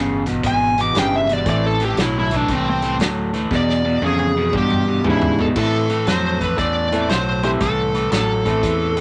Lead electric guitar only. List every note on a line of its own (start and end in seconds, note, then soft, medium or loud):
0.47 0.79 G#5 medium
0.81 0.96 D6 loud
0.99 1.14 G5 loud
1.16 1.33 E5 medium
1.33 1.48 D5 medium
1.49 1.65 D5 medium
1.66 1.82 A4 medium
1.85 2.01 G4 loud
2.01 2.16 E4 medium
2.19 2.36 E4 medium
2.36 2.53 D4 medium
2.53 2.68 C4 loud
2.70 2.96 C4 loud
3.55 4.03 D5 medium
4.05 4.54 G#4 medium
4.57 5.05 G4 medium
5.10 5.40 E4 loud
5.40 5.45 A4 medium
5.58 6.05 A4 medium
6.08 6.43 C5 medium
6.43 6.55 B4 medium
6.59 7.10 D5 medium
7.10 7.41 C5 medium
7.44 7.49 C5 medium
7.61 8.09 A4 medium
8.12 9.01 A4 medium